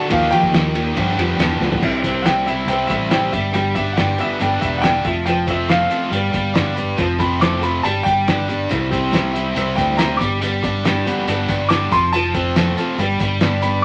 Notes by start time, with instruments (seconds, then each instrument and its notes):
Already playing: overdriven electric guitar F#4
0.09 fingered electric bass D#2, steel-string acoustic guitar D#3 F3 A#3 F4 G4, overdriven electric guitar D#4, grand piano F5, kick, ride
0.21 snare
0.31 steel-string acoustic guitar D#3 F3 A#3 F4 G4, grand piano G5, ride
0.43 kick
0.53 fingered electric bass D#2, snare, ride, tambourine
0.75 steel-string acoustic guitar A#3 F4 G4, ride
0.96 overdriven electric guitar G2 D3 G3, fingered electric bass G2, steel-string acoustic guitar F3 B3 F4 G4, kick, ride
1.17 fingered electric bass F2, steel-string acoustic guitar F3 B3 F4 G4, ride
1.38 fingered electric bass E2, steel-string acoustic guitar G2 D3 F3 B3 F4 G4, snare, ride, tambourine
1.60 fingered electric bass D2, steel-string acoustic guitar F3 B3 F4 G4, snare
1.72 floor tom
1.82 fingered electric bass C2, steel-string acoustic guitar C3 G3 C4 E4 G4, kick, crash
2.02 steel-string acoustic guitar C4 E4 G4, kick, closed hi-hat
2.22 steel-string acoustic guitar C3 G3 C4 E4 G4, grand piano F#5 G5, closed hi-hat
2.26 snare
2.44 steel-string acoustic guitar C4 E4 G4, grand piano E5, closed hi-hat
2.66 fingered electric bass C2, steel-string acoustic guitar G3 C4 E4 G4, grand piano G5, closed hi-hat
2.87 fingered electric bass A1, overdriven electric guitar G3, grand piano E5, kick, closed hi-hat
3.10 steel-string acoustic guitar C3 G3 C4 E4 G4, grand piano G5, snare, closed hi-hat
3.32 fingered electric bass G1, steel-string acoustic guitar G3 B3 D4 G4, grand piano E5, kick, closed hi-hat
3.53 steel-string acoustic guitar G2 D3 G3 B3 D4 G4, grand piano G5, closed hi-hat
3.75 steel-string acoustic guitar G3 B3 D4 G4, grand piano E5, kick, closed hi-hat
3.93 grand piano F#5
3.97 steel-string acoustic guitar G2 D3 G3 B3 D4 G4, grand piano G5, snare, closed hi-hat
4.18 steel-string acoustic guitar G3 B3 D4 G4, grand piano E5, closed hi-hat
4.40 fingered electric bass G1, steel-string acoustic guitar G3 B3 D4 G4, grand piano G5, closed hi-hat
4.60 fingered electric bass E1, overdriven electric guitar G3, grand piano E5, kick, closed hi-hat
4.77 grand piano F#5
4.82 steel-string acoustic guitar G2 D3 G3 B3 D4 G4, grand piano G5, snare, closed hi-hat
5.04 fingered electric bass F1, overdriven electric guitar F3, steel-string acoustic guitar C4 F4 A4, grand piano E5, kick, closed hi-hat
5.26 steel-string acoustic guitar F3 C4 F4 A4, grand piano G5, closed hi-hat
5.48 steel-string acoustic guitar C4 F4 A4, grand piano E5, kick, closed hi-hat
5.68 steel-string acoustic guitar F3 C4 F4 A4, overdriven electric guitar A3, grand piano F5, snare, closed hi-hat
5.90 steel-string acoustic guitar C4 F4 A4, closed hi-hat
6.10 fingered electric bass G1, steel-string acoustic guitar G3 B3 D4 B4, closed hi-hat
6.32 fingered electric bass G1, overdriven electric guitar G3, kick, closed hi-hat
6.55 steel-string acoustic guitar G2 D3 G3 B3 D4 B4, snare, closed hi-hat
6.76 steel-string acoustic guitar G3 B3 D4 B4, closed hi-hat
6.98 fingered electric bass F1, steel-string acoustic guitar F3 C4 F4 A4, kick, closed hi-hat
7.18 steel-string acoustic guitar C4 F4 A4, grand piano B5, kick, closed hi-hat
7.39 steel-string acoustic guitar F3 C4 F4 A4, overdriven electric guitar A3, grand piano D6, snare, closed hi-hat
7.61 steel-string acoustic guitar C4 F4 A4, grand piano B5, closed hi-hat
7.83 fingered electric bass G1, steel-string acoustic guitar G3 B3 D4 G4, grand piano A5, closed hi-hat
8.03 fingered electric bass G1, overdriven electric guitar G3, grand piano G5, kick, closed hi-hat
8.27 steel-string acoustic guitar G2 D3 G3 B3 D4 G4, snare, closed hi-hat
8.48 steel-string acoustic guitar G3 B3 D4 G4, closed hi-hat
8.69 fingered electric bass C2, steel-string acoustic guitar C3 G3 C4 E4 G4, kick, closed hi-hat, tambourine
8.90 steel-string acoustic guitar C4 E4 G4, kick, closed hi-hat
9.12 steel-string acoustic guitar C3 G3 C4 E4 G4, snare, closed hi-hat, tambourine
9.35 steel-string acoustic guitar C4 E4 G4, closed hi-hat, tambourine
9.56 fingered electric bass C2, steel-string acoustic guitar G3 C4 E4 G4, closed hi-hat
9.75 fingered electric bass D2, overdriven electric guitar G3, grand piano G5, kick, closed hi-hat, tambourine
9.97 steel-string acoustic guitar C3 G3 C4 E4 G4, grand piano A#5, snare, closed hi-hat, tambourine
10.17 fingered electric bass G1, steel-string acoustic guitar D4 G4, grand piano D6, kick
10.21 steel-string acoustic guitar G3 B3, closed hi-hat, tambourine
10.42 steel-string acoustic guitar G2 D3 G3 B3 D4 G4, closed hi-hat, tambourine
10.63 steel-string acoustic guitar G3 B3 D4 G4, kick, closed hi-hat
10.85 steel-string acoustic guitar G2 D3 G3 B3 D4 G4, snare, closed hi-hat, tambourine
11.05 steel-string acoustic guitar G3 B3 D4 G4, closed hi-hat, tambourine
11.19 snare
11.28 fingered electric bass G1, steel-string acoustic guitar G3 B3 D4 G4, closed hi-hat
11.48 fingered electric bass G1, overdriven electric guitar G3, kick, closed hi-hat, tambourine
11.69 steel-string acoustic guitar G2 D3 G3 B3 D4 G4, grand piano D6, snare, closed hi-hat, tambourine
11.92 fingered electric bass F1, overdriven electric guitar F3, steel-string acoustic guitar C4 F4 A4, grand piano C6, kick, closed hi-hat, tambourine
12.12 steel-string acoustic guitar F3 C4 F4 A4, grand piano A5, closed hi-hat, tambourine
12.34 steel-string acoustic guitar C4 F4 A4, kick, closed hi-hat
12.56 steel-string acoustic guitar F3 C4 F4 A4, overdriven electric guitar A3, snare, closed hi-hat, tambourine
12.78 steel-string acoustic guitar C4 F4 A4, closed hi-hat, tambourine
12.98 fingered electric bass G1, steel-string acoustic guitar G3 B3 D4 B4, closed hi-hat
13.19 fingered electric bass G1, overdriven electric guitar G3, kick, closed hi-hat, tambourine
13.40 steel-string acoustic guitar G2 D3 G3 B3 D4 B4, snare, closed hi-hat, tambourine
13.62 steel-string acoustic guitar G3 B3 D4 B4, grand piano B5, closed hi-hat, tambourine